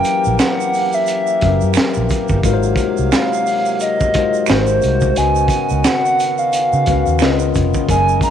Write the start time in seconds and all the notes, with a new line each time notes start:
Already playing: E3 F#3 A#3 C#4 G4 A#4 E5 G5
0.04 closed hi-hat, shaker
0.24 A#1, shaker
0.39 F#5, finger snap, snare, closed hi-hat, shaker
0.60 shaker
0.74 open hi-hat, shaker
0.93 E5, shaker
1.07 closed hi-hat, shaker
1.27 shaker
1.41 F#1 F#3 C#4 G4 A#4 E5, kick, closed hi-hat
1.61 F#2, shaker
1.74 finger snap, snare, closed hi-hat, shaker
1.78 muted fingered electric bass stroke
1.94 A#1, shaker
2.09 kick, closed hi-hat, shaker
2.28 G1, kick, shaker
2.43 G#1 C3 F#3 G#3 D#4 F4 F#4 A#4 F5, kick, closed hi-hat, shaker
2.47 B4
2.54 C5
2.63 shaker
2.76 kick, closed hi-hat, shaker
2.97 C2, shaker
3.12 F5, finger snap, snare, closed hi-hat, shaker
3.33 shaker
3.46 open hi-hat, shaker
3.66 shaker
3.80 D#5, closed hi-hat, shaker
4.00 kick, shaker
4.14 G#3 D#4 F4 F#4 A#4, kick, closed hi-hat
4.18 C5
4.34 shaker
4.46 G#1 G#3 D#4 F#4 C5, finger snap, snare, closed hi-hat, shaker
4.51 A#4 C5
4.67 shaker
4.82 C2, closed hi-hat, shaker
5.01 kick, shaker
5.15 C#2 C#3 D#3 B3 C#4 F#4 B4 G#5, closed hi-hat, shaker
5.20 D#5
5.35 shaker
5.48 kick, closed hi-hat, shaker
5.69 C#2, shaker
5.84 F#5, finger snap, snare, closed hi-hat, shaker
6.05 shaker
6.19 closed hi-hat, shaker
6.38 F5, shaker
6.53 closed hi-hat, shaker
6.73 C#3, shaker
6.86 C#2 C#3 C#4 F#4 B4 F5, kick, closed hi-hat, shaker
7.06 D#2, shaker
7.19 C#2 C#3 D#3 G#3 C#4 F4 A#4 B4, finger snap, snare, closed hi-hat, shaker
7.23 D#5
7.39 shaker
7.54 F1, kick, closed hi-hat, shaker
7.74 kick, shaker
7.89 F#1 F#3 G#3 A#3 C#4 G#4 A#4 D#5 G#5, kick, closed hi-hat, shaker
8.08 shaker
8.21 A#5, kick, closed hi-hat, shaker